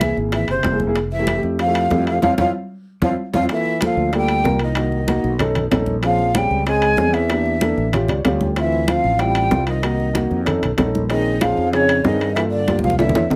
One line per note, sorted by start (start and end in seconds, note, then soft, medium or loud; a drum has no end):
0.00 0.11 C2 medium
0.00 0.16 E3 medium
0.00 0.45 A#3 medium
0.00 0.45 E4 medium
0.00 0.46 G#4 medium
0.00 0.17 E5 medium
0.00 high bongo soft
0.00 high conga medium
0.00 high timbale medium
0.00 low timbale medium
0.17 0.46 G#1 medium
0.17 high bongo soft
0.17 high conga soft
0.32 0.48 E3 medium
0.32 0.48 E5 medium
0.32 high bongo medium
0.32 high conga soft
0.32 high timbale medium
0.48 0.63 F#1 medium
0.48 0.79 C3 medium
0.48 0.79 C5 medium
0.48 high bongo soft
0.48 high conga soft
0.48 high timbale medium
0.63 1.38 F1 medium
0.63 high bongo medium
0.63 low bongo medium
0.63 high conga medium
0.63 high timbale medium
0.63 low timbale medium
0.71 0.83 A#3 medium
0.71 0.83 E4 medium
0.71 0.84 G#4 medium
0.80 high bongo soft
0.80 high conga medium
0.87 0.95 A#3 medium
0.87 0.96 E4 medium
0.87 0.96 G#4 loud
0.95 high bongo medium
0.95 high conga soft
0.95 high timbale medium
1.12 1.42 E3 medium
1.12 1.41 E5 medium
1.12 high conga soft
1.19 1.30 A3 medium
1.19 1.31 E4 medium
1.19 1.32 G4 medium
1.27 high bongo medium
1.27 high conga medium
1.27 high timbale medium
1.27 low timbale medium
1.35 1.58 A3 medium
1.35 1.58 E4 medium
1.35 1.59 G4 medium
1.43 1.88 F2 medium
1.43 high conga soft
1.59 2.05 F3 medium
1.59 2.04 F5 loud
1.59 high bongo medium
1.59 high conga soft
1.59 high timbale medium
1.67 1.84 A3 medium
1.67 1.84 E4 medium
1.67 1.85 G4 medium
1.74 high conga soft
1.74 high timbale medium
1.90 2.21 F2 medium
1.90 2.22 A3 medium
1.90 2.22 E4 medium
1.90 2.24 G4 medium
1.90 high bongo medium
1.90 low bongo medium
1.90 high conga medium
1.90 low timbale medium
2.07 2.22 F3 medium
2.07 2.22 F5 medium
2.07 high conga soft
2.07 high timbale medium
2.22 2.35 F2 medium
2.22 2.30 F3 loud
2.22 2.33 C4 medium
2.22 2.33 E4 medium
2.22 2.33 F4 medium
2.22 2.33 F5 medium
2.22 low bongo medium
2.22 high conga medium
2.22 high timbale loud
2.38 2.50 F2 medium
2.38 2.46 F3 medium
2.38 2.50 C4 medium
2.38 2.50 E4 medium
2.38 2.50 F4 medium
2.38 2.49 F5 medium
2.38 low bongo loud
2.38 high conga loud
2.38 high timbale loud
3.02 3.14 F2 medium
3.02 3.10 F3 loud
3.02 3.13 C4 medium
3.02 3.14 E4 medium
3.02 3.13 F4 medium
3.02 3.13 F5 medium
3.02 low bongo loud
3.02 high conga medium
3.02 high timbale medium
3.33 3.46 F2 medium
3.33 3.41 F3 medium
3.33 3.44 C4 medium
3.33 3.45 E4 medium
3.33 3.45 F4 medium
3.33 3.44 F5 medium
3.33 low bongo medium
3.33 high conga medium
3.33 high timbale medium
3.49 3.80 E3 medium
3.49 3.72 A#3 medium
3.49 3.73 F4 medium
3.49 3.73 A4 medium
3.49 3.81 E5 loud
3.49 high bongo medium
3.49 high conga soft
3.49 high timbale medium
3.66 high conga soft
3.81 4.12 F3 medium
3.81 4.04 A#3 medium
3.81 4.04 F4 medium
3.81 4.05 A4 medium
3.81 4.13 F5 medium
3.81 high bongo medium
3.81 high conga loud
3.81 high timbale medium
3.81 low timbale medium
3.97 4.41 D2 medium
3.97 high conga soft
4.13 4.57 G3 medium
4.13 4.35 A#3 medium
4.13 4.36 F4 medium
4.13 4.36 A4 medium
4.13 high bongo medium
4.13 high conga soft
4.13 high timbale medium
4.17 4.60 G5 loud
4.28 high conga soft
4.28 high timbale medium
4.44 5.19 C2 medium
4.44 4.67 A#3 medium
4.44 4.67 F4 medium
4.44 4.68 A#4 medium
4.44 high bongo medium
4.44 low bongo medium
4.44 high conga medium
4.44 low timbale medium
4.59 5.53 D#3 medium
4.59 5.53 D#5 medium
4.59 high conga soft
4.59 high timbale medium
4.75 4.98 A#3 medium
4.75 4.99 D#4 medium
4.75 4.99 F#4 medium
4.75 high bongo medium
4.75 high conga soft
4.75 high timbale medium
4.92 high conga soft
5.07 5.30 A#3 medium
5.07 5.30 D#4 medium
5.07 5.31 F#4 medium
5.07 high bongo medium
5.07 high conga medium
5.07 high timbale medium
5.07 low timbale medium
5.24 5.68 B1 loud
5.24 high bongo soft
5.24 high conga soft
5.39 5.62 C#4 medium
5.39 5.62 D#4 medium
5.39 5.63 A4 loud
5.39 high bongo medium
5.39 high conga soft
5.39 low conga medium
5.39 high timbale medium
5.55 high bongo soft
5.55 high conga soft
5.55 low conga medium
5.55 high timbale medium
5.71 6.46 A#1 medium
5.71 5.94 C#4 medium
5.71 5.94 D#4 medium
5.71 5.95 A4 loud
5.71 high bongo medium
5.71 low bongo medium
5.71 high conga medium
5.71 high timbale medium
5.71 low timbale medium
5.86 high bongo soft
5.86 high conga medium
6.02 6.37 F3 medium
6.02 6.25 C4 medium
6.02 6.26 C#4 medium
6.02 6.26 G#4 medium
6.02 6.38 F5 loud
6.02 high bongo medium
6.02 high conga soft
6.02 high timbale medium
6.18 high conga soft
6.34 6.66 G3 medium
6.34 6.57 C4 medium
6.34 6.57 C#4 medium
6.34 6.58 G#4 medium
6.34 6.66 G5 medium
6.34 high bongo medium
6.34 high conga loud
6.34 high timbale medium
6.34 low timbale medium
6.50 6.95 C#2 medium
6.50 high conga soft
6.66 7.16 G#3 medium
6.66 6.89 C4 medium
6.66 6.89 C#4 medium
6.66 6.90 G#4 medium
6.66 7.15 G#5 loud
6.66 high bongo medium
6.66 high conga soft
6.66 high timbale medium
6.82 high conga soft
6.82 high timbale medium
6.97 7.72 E2 medium
6.97 7.21 C4 medium
6.97 7.21 C#4 medium
6.97 7.22 G#4 medium
6.97 high bongo medium
6.97 low bongo medium
6.97 high conga medium
6.97 low timbale medium
7.13 8.10 E3 medium
7.13 8.09 E5 medium
7.13 high conga soft
7.13 high timbale medium
7.29 7.52 A#3 medium
7.29 7.53 D4 medium
7.29 7.53 G4 medium
7.29 high bongo medium
7.29 high conga soft
7.29 high timbale medium
7.46 high conga soft
7.61 7.84 A#3 medium
7.61 7.84 D4 medium
7.61 7.85 A4 medium
7.61 high bongo medium
7.61 high conga medium
7.61 high timbale medium
7.61 low timbale medium
7.77 8.07 A1 medium
7.77 high bongo soft
7.77 high conga soft
7.93 8.16 C#4 medium
7.93 8.16 F4 medium
7.93 8.17 G4 medium
7.93 high bongo medium
7.93 high conga soft
7.93 low conga medium
7.93 high timbale medium
8.08 8.24 C#2 medium
8.08 8.17 D5 medium
8.08 high bongo soft
8.08 high conga soft
8.08 low conga medium
8.08 high timbale medium
8.18 8.25 C#5 medium
8.25 8.99 D2 medium
8.25 8.48 C#4 medium
8.25 8.48 F4 medium
8.25 8.49 G4 medium
8.25 8.41 F5 medium
8.25 high bongo medium
8.25 low bongo medium
8.25 high conga medium
8.25 high timbale medium
8.25 low timbale medium
8.41 8.57 G5 medium
8.41 high bongo soft
8.41 high conga medium
8.56 8.91 E3 medium
8.56 8.79 C4 medium
8.56 8.79 E4 medium
8.56 8.80 F4 medium
8.56 8.91 E5 loud
8.56 high bongo medium
8.56 high conga soft
8.56 high timbale medium
8.72 high conga soft
8.87 9.22 F3 medium
8.87 9.10 C4 medium
8.87 9.11 E4 medium
8.87 9.11 F4 medium
8.87 9.21 F5 medium
8.87 high bongo medium
8.87 high conga medium
8.87 high timbale medium
8.87 low timbale medium
9.04 9.48 A1 medium
9.04 high conga soft
9.19 9.66 G3 medium
9.19 9.43 C4 medium
9.19 9.43 E4 medium
9.19 9.43 F4 medium
9.19 9.68 G5 loud
9.19 high bongo medium
9.19 high conga soft
9.19 high timbale medium
9.35 high conga soft
9.35 high timbale medium
9.51 10.25 C2 medium
9.51 9.74 C4 medium
9.51 9.74 E4 medium
9.51 9.75 F4 medium
9.51 high bongo medium
9.51 low bongo medium
9.51 high conga medium
9.51 low timbale medium
9.67 10.58 D#3 medium
9.67 10.59 D#5 medium
9.67 high conga soft
9.67 high timbale medium
9.82 10.05 A#3 medium
9.82 10.06 D#4 medium
9.82 10.06 F#4 medium
9.82 high bongo medium
9.82 high conga soft
9.82 high timbale medium
10.00 high conga soft
10.13 10.37 A#3 medium
10.13 10.37 D#4 medium
10.13 10.38 F#4 medium
10.13 high bongo medium
10.13 high conga medium
10.13 high timbale medium
10.13 low timbale medium
10.31 10.61 F2 medium
10.31 high bongo soft
10.31 high conga soft
10.45 10.68 C#4 medium
10.45 10.69 D#4 medium
10.45 10.69 A4 medium
10.45 high bongo medium
10.45 high conga soft
10.45 low conga medium
10.45 high timbale medium
10.62 10.77 B1 medium
10.62 high bongo soft
10.62 high conga soft
10.62 low conga medium
10.62 high timbale medium
10.77 11.52 A#1 medium
10.77 11.00 C#4 medium
10.77 11.01 D#4 medium
10.77 11.01 A4 medium
10.77 high bongo medium
10.77 low bongo medium
10.77 high conga medium
10.77 high timbale medium
10.77 low timbale medium
10.94 high bongo soft
10.94 high conga medium
11.09 11.42 D#3 loud
11.09 11.32 C4 medium
11.09 11.32 C#4 medium
11.09 11.32 D#4 medium
11.09 11.32 G#4 medium
11.09 11.43 D#5 loud
11.09 high bongo medium
11.09 high conga soft
11.09 high timbale medium
11.26 high conga soft
11.40 11.72 F3 medium
11.40 11.63 C4 medium
11.40 11.64 C#4 medium
11.40 11.64 D#4 medium
11.40 11.64 G#4 medium
11.40 11.72 F5 loud
11.40 high bongo medium
11.40 high conga medium
11.40 high timbale loud
11.40 low timbale medium
11.57 12.02 F2 medium
11.57 high conga soft
11.72 12.02 C#3 medium
11.72 11.95 C4 medium
11.72 11.95 C#4 medium
11.72 11.96 D#4 medium
11.72 11.96 G#4 medium
11.72 12.03 C#5 loud
11.72 high bongo medium
11.72 high conga soft
11.72 high timbale medium
11.89 high conga soft
11.89 high timbale loud
12.03 12.79 G2 medium
12.03 12.34 D#3 medium
12.03 12.26 C4 medium
12.03 12.27 C#4 medium
12.03 12.27 D#4 medium
12.03 12.27 G#4 medium
12.03 12.34 D#5 medium
12.03 high bongo medium
12.03 low bongo medium
12.03 high conga medium
12.03 low timbale medium
12.20 high conga soft
12.20 high timbale medium
12.34 12.43 E3 medium
12.34 12.58 A#3 medium
12.34 12.59 F4 medium
12.34 12.59 A4 medium
12.34 12.40 E5 loud
12.34 high bongo medium
12.34 high conga soft
12.34 high timbale loud
12.50 12.81 D3 medium
12.50 12.81 D5 medium
12.50 high conga soft
12.68 12.90 A#3 medium
12.68 12.91 F4 medium
12.68 12.91 G4 medium
12.68 high bongo medium
12.68 high conga medium
12.68 high timbale medium
12.68 low timbale medium
12.79 12.98 F3 medium
12.79 high conga medium
12.83 13.13 C2 medium
12.83 12.98 F5 medium
12.83 high bongo medium
12.90 high conga loud
12.98 13.30 E3 medium
12.98 13.21 A#3 medium
12.98 13.22 D4 medium
12.98 13.22 E4 medium
12.98 13.22 A4 medium
12.98 13.29 E5 medium
12.98 high bongo medium
12.98 low conga medium
12.98 high timbale medium
13.09 low conga medium
13.15 13.30 E2 medium
13.15 low bongo loud
13.15 high timbale medium
13.30 13.36 F2 medium
13.30 13.36 A#3 medium
13.30 13.36 D4 medium
13.30 low bongo medium
13.30 low conga medium
13.30 low timbale medium